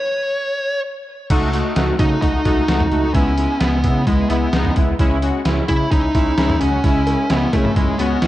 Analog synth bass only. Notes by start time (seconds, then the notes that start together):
1.30 C#2
1.76 C#2
2.00 C#3
2.22 C#2
2.46 C#2
2.69 C#2
2.91 C#2
3.15 C#2
3.61 C#2
3.84 C#3
4.07 C#2
4.30 C#2
4.53 C#2
4.76 C#2
4.99 C#2
5.45 C#2
5.69 C#3
5.92 C#2
6.15 C#2
6.38 C#2
6.61 C#2
6.84 C#2
7.30 C#2
7.53 C#3
7.76 C#2
7.99 C#2
8.23 C#2